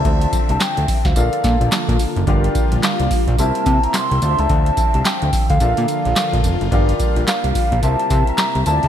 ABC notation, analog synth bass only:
X:1
M:4/4
L:1/16
Q:"Swing 16ths" 1/4=108
K:Dm
V:1 name="Analog synth bass" clef=bass
D,,2 z C,, z D,, z D,, B,,, z B,, B,,, z B,, z ^F,,, | G,,,2 z B,,, z C,, z B,,, C,, z C, z2 C,, D,, ^C,, | D,,2 z C,, z D,, z D,, B,,, B,, z B,,, z B,,, F,,, ^F,,, | G,,,2 z B,,, z C,, z B,,, C,, z C, z2 C,, D,, ^C,, |]